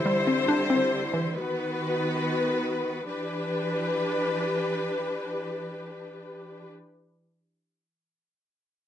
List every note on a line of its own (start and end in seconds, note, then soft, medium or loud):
0.00 0.71 D3 medium
0.00 1.33 D3 medium
0.00 0.92 E3 medium
0.00 1.33 G3 medium
0.00 1.32 E4 medium
0.00 1.33 C5 medium
0.06 1.14 G3 medium
0.27 0.69 C4 medium
0.48 1.35 D4 loud
0.70 1.35 C4 medium
1.14 1.35 E3 medium
1.35 3.06 D#3 medium
1.35 3.06 B3 medium
1.35 3.06 F#4 medium
1.35 3.06 B4 medium
3.08 6.68 E3 medium
3.08 6.68 D4 medium
3.08 6.68 G4 medium
3.08 6.68 B4 medium